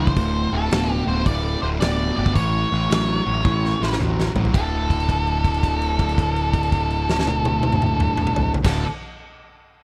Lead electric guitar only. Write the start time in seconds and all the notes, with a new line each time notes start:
0.00 C5
0.53 A4
1.08 C5
1.27 D5
1.62 C5
1.80 D5
2.17 D5
2.35 C#5
4.54 A4
8.65 A4